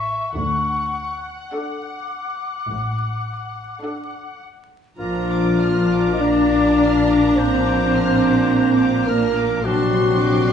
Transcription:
0.00 0.16 A1 soft
0.00 0.16 A2 soft
0.00 0.37 E5 soft
0.00 0.35 C#6 medium
0.36 1.31 D2 soft
0.36 1.31 D3 soft
0.36 4.38 F#5 soft
0.36 1.20 C#6 medium
1.52 2.42 D4 soft
1.52 2.42 A4 soft
1.52 2.41 F#5 soft
1.52 4.38 D6 medium
2.68 3.62 A1 soft
2.68 3.62 A2 soft
3.83 4.72 D4 soft
3.83 4.72 A4 soft
3.83 4.72 F#5 soft
4.96 9.61 A#1 soft
4.96 9.60 A#2 soft
4.96 6.17 F3 medium
4.96 6.18 F3 medium
4.96 9.66 A#3 soft
4.96 9.59 D4 soft
4.96 9.61 D4 soft
4.96 6.24 F4 medium
4.96 6.15 F4 medium
4.96 9.60 A#5 soft
4.96 9.61 D6 soft
5.00 5.28 A#5 soft
5.31 5.61 D6 soft
5.61 5.92 F6 soft
5.92 6.22 D6 soft
6.13 6.23 D#5 soft
6.20 7.36 D4 medium
6.20 7.38 D4 medium
6.20 7.38 D5 medium
6.20 7.40 D5 medium
6.20 6.52 A#5 soft
6.54 6.82 D6 soft
6.83 7.11 F6 soft
7.11 7.39 D6 soft
7.36 9.08 C4 medium
7.36 9.08 C5 medium
7.36 7.65 A#5 soft
7.67 7.95 D6 soft
7.95 8.23 F6 soft
8.22 8.51 D6 soft
8.49 8.79 A#5 soft
8.78 9.08 D6 soft
9.06 9.63 A#3 medium
9.06 9.64 A#3 medium
9.06 9.64 A#4 medium
9.06 9.66 A#4 medium
9.06 9.36 F6 soft
9.36 9.65 D6 soft
9.64 10.53 A#1 medium
9.64 10.53 C3 medium
9.64 10.53 F#3 medium
9.64 10.53 C4 medium
9.64 10.53 D4 medium
9.64 10.53 F#4 medium
9.64 9.91 A5 medium
9.64 10.53 C6 medium
9.64 10.53 D6 medium
9.93 10.22 C6 soft
10.21 10.49 D6 soft
10.49 10.53 F#6 soft

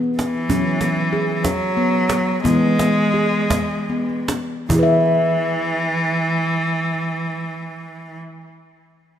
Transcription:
0.00 0.46 E3 medium
0.00 0.49 B3 medium
0.00 cajon slap soft
0.19 1.46 E3 medium
0.19 cajon slap soft
0.34 cajon slap soft
0.49 2.40 F#3 medium
0.49 1.13 C#4 medium
0.49 cajon bass soft
0.65 cajon slap soft
0.81 cajon slap soft
0.97 cajon slap soft
1.13 1.77 G#4 medium
1.13 cajon slap soft
1.29 cajon slap soft
1.44 2.43 F#3 medium
1.44 cajon bass soft
1.44 cajon slap soft
1.61 cajon slap soft
1.77 2.43 B3 medium
1.77 cajon slap soft
1.93 cajon slap soft
2.10 cajon slap soft
2.27 cajon slap soft
2.44 4.67 E3 medium
2.44 4.25 G#3 medium
2.44 3.15 B3 medium
2.44 cajon bass soft
2.79 cajon slap soft
3.14 3.89 G#4 medium
3.14 cajon slap soft
3.33 cajon slap soft
3.50 cajon bass soft
3.50 cajon slap soft
3.89 4.70 B3 soft
3.89 cajon slap soft
4.10 cajon slap soft
4.28 cajon slap soft
4.69 8.16 E3 medium
4.69 8.18 E3 medium
4.69 8.18 E4 soft
4.69 cajon bass medium
4.75 8.22 G#4 soft
4.79 8.26 B4 soft
4.79 8.30 E5 soft

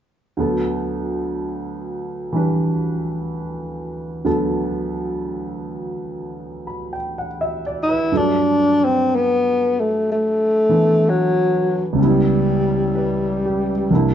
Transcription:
0.37 4.23 D2 soft
0.37 4.23 D3 soft
0.37 4.23 F#3 soft
0.37 4.24 B3 soft
0.37 4.24 A4 soft
2.33 4.24 E3 soft
2.33 4.25 G3 soft
2.33 4.26 D4 soft
2.37 4.26 B4 soft
4.25 8.10 D2 soft
4.25 8.10 D3 soft
4.25 8.11 F#3 soft
4.25 8.11 B3 soft
4.25 8.11 A4 soft
6.67 6.96 B5 soft
6.93 7.25 G5 soft
7.18 7.61 F#5 soft
7.41 7.81 E5 soft
7.67 7.95 D5 soft
7.83 8.18 E4 medium
7.89 8.22 B4 soft
8.12 11.98 G2 soft
8.12 11.99 D3 soft
8.12 11.99 F#3 soft
8.12 12.00 A3 soft
8.16 8.86 D4 medium
8.16 12.01 A4 medium
8.84 9.17 C4 medium
9.15 9.81 B3 medium
9.80 10.09 A3 medium
10.12 11.11 A3 medium
10.69 11.98 E3 soft
10.69 11.98 B3 soft
10.69 11.98 D4 soft
10.69 11.99 B4 soft
11.09 11.83 F#3 medium
11.93 13.88 C#2 soft
11.93 13.89 C#3 soft
11.99 13.91 G3 soft
11.99 13.92 B3 soft
12.04 14.14 G3 medium
12.04 13.93 E4 soft
12.95 13.71 B4 soft
13.46 14.12 G4 soft
13.90 14.14 C2 soft
13.90 14.14 C3 soft
13.90 14.14 A#3 soft
13.90 14.14 D4 soft
13.95 14.14 E4 soft

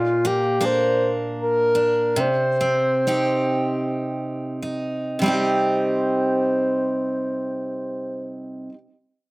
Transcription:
0.00 2.18 A#2 medium
0.00 0.28 F4 medium
0.25 0.59 A#3 soft
0.25 0.67 G4 medium
0.61 2.26 A#3 soft
0.61 1.74 D4 soft
0.61 2.27 A#4 soft
0.65 1.12 C5 medium
1.39 2.22 A#4 medium
1.75 2.26 D4 soft
2.16 5.18 C3 medium
2.20 4.09 C5 medium
2.61 3.06 C4 soft
3.07 5.23 C4 soft
3.07 4.62 D#4 soft
3.07 5.27 G4 soft
4.62 5.25 D#4 soft
5.19 8.69 C3 soft
5.19 8.72 G3 soft
5.19 8.33 C5 medium
5.23 8.73 C4 soft
5.23 8.76 D#4 medium
5.28 8.78 G4 medium

